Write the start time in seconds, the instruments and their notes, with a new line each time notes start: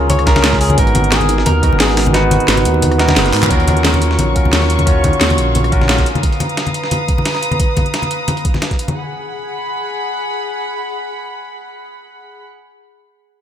Already playing: detuned saw bass C#2, tine electric piano C#4 F4 G#4 A#4 C#5
0.10 clean electric guitar C#5, closed hi-hat, high conga
0.19 cross-stick, closed hi-hat
0.26 tine electric piano C#4 F4 G#4 A#4, clean electric guitar A#4, kick, snare, closed hi-hat
0.36 snare, closed hi-hat, high conga
0.44 snare, closed hi-hat
0.53 kick, snare
0.61 clean electric guitar G#4, closed hi-hat, open hi-hat
0.70 closed hi-hat, high conga
0.77 detuned saw bass G#1, tine electric piano B3 D#4 F#4 A#4, kick, closed hi-hat
0.87 closed hi-hat
0.95 closed hi-hat, high conga
1.04 closed hi-hat
1.12 clean electric guitar G#4, snare, closed hi-hat
1.21 cross-stick, closed hi-hat, high conga
1.29 closed hi-hat, high bongo
1.38 snare
1.46 detuned saw bass D#2, clean electric guitar A#4, closed hi-hat, high conga
1.62 tine electric piano B3 D#4 F#4 A#4, kick, closed hi-hat
1.72 detuned saw bass F#1, high conga
1.80 detuned saw bass G#1, clean electric guitar G#4, snare, closed hi-hat, open hi-hat
1.89 snare
1.97 snare, closed hi-hat, open hi-hat
2.06 closed hi-hat, high conga
2.13 tine electric piano B3 D#4 F#4 B4, clean electric guitar F#4, snare, closed hi-hat
2.31 closed hi-hat, high bongo, high conga
2.40 closed hi-hat
2.48 detuned saw bass G#1, snare, closed hi-hat
2.57 cross-stick, closed hi-hat, high conga
2.65 detuned saw bass D#2, closed hi-hat, high bongo
2.74 high bongo
2.82 closed hi-hat, high conga
2.92 cross-stick, closed hi-hat
2.98 tine electric piano B3 D#4 F#4 A#4, snare, closed hi-hat
3.08 snare, closed hi-hat, high conga
3.16 detuned saw bass F#1, snare, closed hi-hat
3.26 snare, closed hi-hat
3.34 detuned saw bass G#2, clap, closed hi-hat, open hi-hat
3.43 clap, closed hi-hat, high conga
3.49 detuned saw bass D#2, string section F#3 F5 C#6, tine electric piano C#4 F4 F#4 A#4, kick, closed hi-hat
3.60 closed hi-hat
3.68 closed hi-hat, high conga
3.77 closed hi-hat
3.85 snare, closed hi-hat
3.94 cross-stick, closed hi-hat, high conga
4.02 closed hi-hat
4.11 snare
4.19 detuned saw bass A#1, closed hi-hat, high conga
4.35 tine electric piano C#4 F4 F#4 A#4, kick, closed hi-hat
4.45 detuned saw bass C#2, high conga
4.53 detuned saw bass D#2, snare, closed hi-hat, open hi-hat
4.62 snare
4.70 closed hi-hat
4.79 closed hi-hat, high conga
4.86 tine electric piano C#4 F4 F#4 C#5, kick, closed hi-hat
5.04 kick, closed hi-hat, high conga
5.13 closed hi-hat
5.21 detuned saw bass D#2, snare, closed hi-hat
5.30 cross-stick, closed hi-hat, high conga
5.38 detuned saw bass A#1, closed hi-hat
5.55 closed hi-hat, high conga
5.64 cross-stick, closed hi-hat
5.72 tine electric piano C#4 F4 F#4 A#4, kick, closed hi-hat
5.81 snare, high conga
5.89 snare, closed hi-hat
5.98 kick, snare, closed hi-hat
6.06 string section B4 A#5 D#6, closed hi-hat
6.15 closed hi-hat, high conga
6.23 kick, closed hi-hat
6.32 closed hi-hat
6.40 closed hi-hat, high conga
6.49 closed hi-hat
6.57 snare, closed hi-hat
6.67 closed hi-hat, high conga
6.74 closed hi-hat
6.84 snare
6.91 closed hi-hat, high conga
7.08 kick, closed hi-hat
7.18 high conga
7.25 snare, closed hi-hat, open hi-hat
7.35 snare
7.43 closed hi-hat
7.51 closed hi-hat, high conga
7.60 kick, closed hi-hat
7.77 kick, closed hi-hat, high conga
7.86 closed hi-hat
7.94 snare, closed hi-hat
8.02 closed hi-hat, high conga
8.11 closed hi-hat
8.28 closed hi-hat, high conga
8.37 closed hi-hat
8.45 kick, closed hi-hat
8.54 snare, high conga
8.62 snare, closed hi-hat
8.71 kick, snare, closed hi-hat
8.79 closed hi-hat
8.88 closed hi-hat, high conga
8.96 string section G#4 F#5 B5